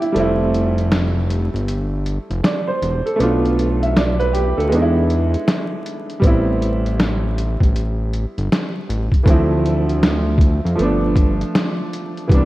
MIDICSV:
0, 0, Header, 1, 4, 480
1, 0, Start_track
1, 0, Tempo, 759494
1, 94, Time_signature, 4, 2, 24, 8
1, 7868, End_track
2, 0, Start_track
2, 0, Title_t, "Upright piano"
2, 0, Program_c, 0, 0
2, 0, Control_c, 0, 64, 127
2, 0, Note_on_c, 0, 55, 64
2, 0, Note_on_c, 0, 58, 54
2, 0, Note_on_c, 0, 62, 63
2, 0, Note_on_c, 0, 64, 53
2, 0, Note_on_c, 0, 67, 63
2, 9, Note_off_c, 0, 64, 0
2, 9, Note_on_c, 0, 64, 53
2, 63, Note_off_c, 0, 55, 0
2, 72, Note_off_c, 0, 58, 0
2, 77, Note_on_c, 0, 55, 64
2, 78, Note_off_c, 0, 62, 0
2, 90, Note_on_c, 0, 57, 65
2, 102, Note_off_c, 0, 67, 0
2, 102, Control_c, 0, 64, 0
2, 106, Note_on_c, 0, 60, 60
2, 112, Note_off_c, 0, 64, 0
2, 121, Note_on_c, 0, 64, 73
2, 206, Control_c, 0, 64, 127
2, 1539, Note_on_c, 0, 74, 63
2, 1682, Note_off_c, 0, 74, 0
2, 1691, Note_on_c, 0, 72, 59
2, 1917, Note_off_c, 0, 72, 0
2, 1932, Note_on_c, 0, 69, 54
2, 1980, Note_off_c, 0, 55, 0
2, 1987, Note_off_c, 0, 57, 0
2, 1995, Note_off_c, 0, 60, 0
2, 1997, Note_on_c, 0, 57, 65
2, 2002, Note_off_c, 0, 64, 0
2, 2012, Note_on_c, 0, 59, 61
2, 2021, Control_c, 0, 64, 0
2, 2025, Note_on_c, 0, 62, 61
2, 2039, Note_on_c, 0, 65, 69
2, 2148, Control_c, 0, 64, 127
2, 2157, Note_off_c, 0, 69, 0
2, 2418, Note_on_c, 0, 76, 54
2, 2495, Note_off_c, 0, 76, 0
2, 2503, Note_on_c, 0, 74, 65
2, 2644, Note_off_c, 0, 74, 0
2, 2651, Note_on_c, 0, 71, 77
2, 2732, Note_off_c, 0, 71, 0
2, 2738, Note_on_c, 0, 67, 66
2, 2881, Note_off_c, 0, 67, 0
2, 2890, Note_on_c, 0, 69, 57
2, 2946, Note_off_c, 0, 57, 0
2, 2954, Note_off_c, 0, 59, 0
2, 2959, Note_on_c, 0, 56, 62
2, 2960, Note_off_c, 0, 62, 0
2, 2967, Note_off_c, 0, 65, 0
2, 2976, Note_on_c, 0, 59, 56
2, 2980, Control_c, 0, 64, 0
2, 2990, Note_on_c, 0, 62, 56
2, 3002, Note_on_c, 0, 63, 56
2, 3040, Note_off_c, 0, 63, 0
2, 3045, Note_on_c, 0, 64, 69
2, 3100, Control_c, 0, 64, 127
2, 3116, Note_off_c, 0, 69, 0
2, 3907, Note_off_c, 0, 56, 0
2, 3916, Note_off_c, 0, 59, 0
2, 3916, Note_on_c, 0, 55, 65
2, 3923, Note_off_c, 0, 62, 0
2, 3930, Note_on_c, 0, 59, 56
2, 3942, Control_c, 0, 64, 0
2, 3944, Note_on_c, 0, 60, 60
2, 3951, Note_off_c, 0, 64, 0
2, 3962, Note_on_c, 0, 64, 70
2, 4047, Control_c, 0, 64, 127
2, 5820, Note_off_c, 0, 55, 0
2, 5827, Note_off_c, 0, 59, 0
2, 5834, Note_off_c, 0, 60, 0
2, 5835, Note_on_c, 0, 52, 57
2, 5843, Note_off_c, 0, 64, 0
2, 5849, Note_on_c, 0, 57, 63
2, 5862, Control_c, 0, 64, 0
2, 5863, Note_on_c, 0, 60, 63
2, 5876, Note_on_c, 0, 64, 71
2, 5877, Note_on_c, 0, 53, 66
2, 5897, Note_off_c, 0, 52, 0
2, 5975, Control_c, 0, 64, 127
2, 6788, Note_off_c, 0, 53, 0
2, 6792, Note_off_c, 0, 57, 0
2, 6797, Note_on_c, 0, 53, 66
2, 6799, Note_off_c, 0, 60, 0
2, 6806, Note_off_c, 0, 64, 0
2, 6810, Note_on_c, 0, 57, 57
2, 6822, Control_c, 0, 64, 0
2, 6825, Note_on_c, 0, 59, 61
2, 6840, Note_on_c, 0, 62, 74
2, 6934, Control_c, 0, 64, 127
2, 7746, Note_off_c, 0, 53, 0
2, 7753, Note_off_c, 0, 57, 0
2, 7757, Note_on_c, 0, 52, 60
2, 7760, Note_off_c, 0, 59, 0
2, 7768, Note_off_c, 0, 62, 0
2, 7770, Note_on_c, 0, 55, 56
2, 7782, Control_c, 0, 64, 0
2, 7785, Note_on_c, 0, 59, 56
2, 7801, Note_on_c, 0, 62, 80
2, 7868, Note_off_c, 0, 52, 0
2, 7868, Note_off_c, 0, 55, 0
2, 7868, Note_off_c, 0, 59, 0
2, 7868, Note_off_c, 0, 62, 0
2, 7868, End_track
3, 0, Start_track
3, 0, Title_t, "Analog synth bass"
3, 0, Program_c, 1, 38
3, 97, Note_on_c, 1, 29, 115
3, 943, Note_off_c, 1, 29, 0
3, 973, Note_on_c, 1, 31, 83
3, 1380, Note_off_c, 1, 31, 0
3, 1456, Note_on_c, 1, 29, 86
3, 1526, Note_off_c, 1, 29, 0
3, 1783, Note_on_c, 1, 28, 86
3, 1910, Note_off_c, 1, 28, 0
3, 2021, Note_on_c, 1, 35, 96
3, 2865, Note_off_c, 1, 35, 0
3, 2894, Note_on_c, 1, 38, 79
3, 2983, Note_on_c, 1, 40, 104
3, 2992, Note_off_c, 1, 38, 0
3, 3389, Note_off_c, 1, 40, 0
3, 3936, Note_on_c, 1, 33, 102
3, 4783, Note_off_c, 1, 33, 0
3, 4809, Note_on_c, 1, 33, 81
3, 5218, Note_off_c, 1, 33, 0
3, 5296, Note_on_c, 1, 31, 84
3, 5366, Note_off_c, 1, 31, 0
3, 5621, Note_on_c, 1, 33, 83
3, 5748, Note_off_c, 1, 33, 0
3, 5854, Note_on_c, 1, 38, 100
3, 6702, Note_off_c, 1, 38, 0
3, 6731, Note_on_c, 1, 41, 79
3, 6803, Note_off_c, 1, 41, 0
3, 6821, Note_on_c, 1, 31, 90
3, 7228, Note_off_c, 1, 31, 0
3, 7773, Note_on_c, 1, 36, 113
3, 7868, Note_off_c, 1, 36, 0
3, 7868, End_track
4, 0, Start_track
4, 0, Title_t, "Drums"
4, 12, Note_on_c, 9, 42, 38
4, 76, Note_off_c, 9, 42, 0
4, 100, Note_on_c, 9, 42, 73
4, 163, Note_off_c, 9, 42, 0
4, 344, Note_on_c, 9, 42, 56
4, 407, Note_off_c, 9, 42, 0
4, 494, Note_on_c, 9, 42, 40
4, 557, Note_off_c, 9, 42, 0
4, 580, Note_on_c, 9, 38, 105
4, 580, Note_on_c, 9, 42, 65
4, 643, Note_off_c, 9, 38, 0
4, 643, Note_off_c, 9, 42, 0
4, 824, Note_on_c, 9, 42, 70
4, 887, Note_off_c, 9, 42, 0
4, 984, Note_on_c, 9, 42, 41
4, 1048, Note_off_c, 9, 42, 0
4, 1063, Note_on_c, 9, 42, 80
4, 1127, Note_off_c, 9, 42, 0
4, 1302, Note_on_c, 9, 42, 58
4, 1365, Note_off_c, 9, 42, 0
4, 1457, Note_on_c, 9, 42, 36
4, 1521, Note_off_c, 9, 42, 0
4, 1543, Note_on_c, 9, 38, 99
4, 1548, Note_on_c, 9, 42, 62
4, 1606, Note_off_c, 9, 38, 0
4, 1611, Note_off_c, 9, 42, 0
4, 1785, Note_on_c, 9, 42, 61
4, 1848, Note_off_c, 9, 42, 0
4, 1939, Note_on_c, 9, 42, 37
4, 2002, Note_off_c, 9, 42, 0
4, 2024, Note_on_c, 9, 42, 74
4, 2087, Note_off_c, 9, 42, 0
4, 2183, Note_on_c, 9, 42, 36
4, 2246, Note_off_c, 9, 42, 0
4, 2268, Note_on_c, 9, 42, 62
4, 2332, Note_off_c, 9, 42, 0
4, 2420, Note_on_c, 9, 42, 39
4, 2483, Note_off_c, 9, 42, 0
4, 2506, Note_on_c, 9, 38, 105
4, 2506, Note_on_c, 9, 42, 63
4, 2569, Note_off_c, 9, 38, 0
4, 2569, Note_off_c, 9, 42, 0
4, 2658, Note_on_c, 9, 42, 30
4, 2721, Note_off_c, 9, 42, 0
4, 2747, Note_on_c, 9, 42, 73
4, 2810, Note_off_c, 9, 42, 0
4, 2909, Note_on_c, 9, 42, 45
4, 2973, Note_off_c, 9, 42, 0
4, 2985, Note_on_c, 9, 42, 74
4, 3048, Note_off_c, 9, 42, 0
4, 3223, Note_on_c, 9, 42, 52
4, 3286, Note_off_c, 9, 42, 0
4, 3376, Note_on_c, 9, 42, 44
4, 3439, Note_off_c, 9, 42, 0
4, 3461, Note_on_c, 9, 38, 90
4, 3466, Note_on_c, 9, 42, 69
4, 3525, Note_off_c, 9, 38, 0
4, 3529, Note_off_c, 9, 42, 0
4, 3703, Note_on_c, 9, 42, 62
4, 3766, Note_off_c, 9, 42, 0
4, 3853, Note_on_c, 9, 42, 37
4, 3916, Note_off_c, 9, 42, 0
4, 3931, Note_on_c, 9, 36, 101
4, 3941, Note_on_c, 9, 42, 72
4, 3994, Note_off_c, 9, 36, 0
4, 4004, Note_off_c, 9, 42, 0
4, 4185, Note_on_c, 9, 42, 65
4, 4249, Note_off_c, 9, 42, 0
4, 4336, Note_on_c, 9, 42, 38
4, 4400, Note_off_c, 9, 42, 0
4, 4422, Note_on_c, 9, 38, 122
4, 4422, Note_on_c, 9, 42, 68
4, 4485, Note_off_c, 9, 38, 0
4, 4485, Note_off_c, 9, 42, 0
4, 4665, Note_on_c, 9, 42, 71
4, 4728, Note_off_c, 9, 42, 0
4, 4806, Note_on_c, 9, 36, 81
4, 4824, Note_on_c, 9, 42, 38
4, 4869, Note_off_c, 9, 36, 0
4, 4888, Note_off_c, 9, 42, 0
4, 4903, Note_on_c, 9, 42, 67
4, 4967, Note_off_c, 9, 42, 0
4, 5141, Note_on_c, 9, 42, 53
4, 5204, Note_off_c, 9, 42, 0
4, 5297, Note_on_c, 9, 42, 40
4, 5360, Note_off_c, 9, 42, 0
4, 5386, Note_on_c, 9, 38, 93
4, 5391, Note_on_c, 9, 42, 64
4, 5450, Note_off_c, 9, 38, 0
4, 5454, Note_off_c, 9, 42, 0
4, 5625, Note_on_c, 9, 42, 63
4, 5688, Note_off_c, 9, 42, 0
4, 5762, Note_on_c, 9, 36, 71
4, 5775, Note_on_c, 9, 42, 36
4, 5825, Note_off_c, 9, 36, 0
4, 5838, Note_off_c, 9, 42, 0
4, 5850, Note_on_c, 9, 36, 110
4, 5861, Note_on_c, 9, 42, 77
4, 5913, Note_off_c, 9, 36, 0
4, 5924, Note_off_c, 9, 42, 0
4, 6103, Note_on_c, 9, 42, 59
4, 6166, Note_off_c, 9, 42, 0
4, 6253, Note_on_c, 9, 42, 43
4, 6316, Note_off_c, 9, 42, 0
4, 6339, Note_on_c, 9, 38, 114
4, 6339, Note_on_c, 9, 42, 61
4, 6402, Note_off_c, 9, 38, 0
4, 6402, Note_off_c, 9, 42, 0
4, 6560, Note_on_c, 9, 36, 102
4, 6580, Note_on_c, 9, 42, 66
4, 6623, Note_off_c, 9, 36, 0
4, 6643, Note_off_c, 9, 42, 0
4, 6740, Note_on_c, 9, 42, 38
4, 6804, Note_off_c, 9, 42, 0
4, 6820, Note_on_c, 9, 42, 66
4, 6883, Note_off_c, 9, 42, 0
4, 7051, Note_on_c, 9, 36, 89
4, 7056, Note_on_c, 9, 42, 55
4, 7114, Note_off_c, 9, 36, 0
4, 7119, Note_off_c, 9, 42, 0
4, 7213, Note_on_c, 9, 42, 40
4, 7276, Note_off_c, 9, 42, 0
4, 7300, Note_on_c, 9, 38, 102
4, 7305, Note_on_c, 9, 42, 60
4, 7363, Note_off_c, 9, 38, 0
4, 7368, Note_off_c, 9, 42, 0
4, 7542, Note_on_c, 9, 42, 66
4, 7605, Note_off_c, 9, 42, 0
4, 7694, Note_on_c, 9, 42, 36
4, 7757, Note_off_c, 9, 42, 0
4, 7770, Note_on_c, 9, 36, 120
4, 7784, Note_on_c, 9, 42, 74
4, 7833, Note_off_c, 9, 36, 0
4, 7847, Note_off_c, 9, 42, 0
4, 7868, End_track
0, 0, End_of_file